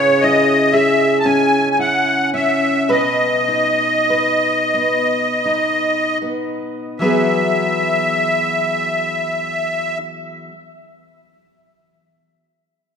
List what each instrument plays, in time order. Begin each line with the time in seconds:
Already playing: steel-string acoustic guitar C#3 C#4 E4 G#4, accordion C#5
0.21 steel-string acoustic guitar E4, accordion D#5
0.72 steel-string acoustic guitar G#4, accordion E5
1.20 accordion A5
1.25 steel-string acoustic guitar C#4, accordion G#5
1.71 accordion G#5
1.79 steel-string acoustic guitar E4, accordion F#5
2.34 steel-string acoustic guitar C#4, accordion E5
2.89 steel-string acoustic guitar B2 B4, accordion D#5
3.48 steel-string acoustic guitar D#4
4.10 steel-string acoustic guitar B4
4.74 steel-string acoustic guitar B3
5.45 steel-string acoustic guitar D#4
6.22 steel-string acoustic guitar B3
6.99 steel-string acoustic guitar E3 F#3 B3 F#4, accordion E5
7.04 steel-string acoustic guitar G#4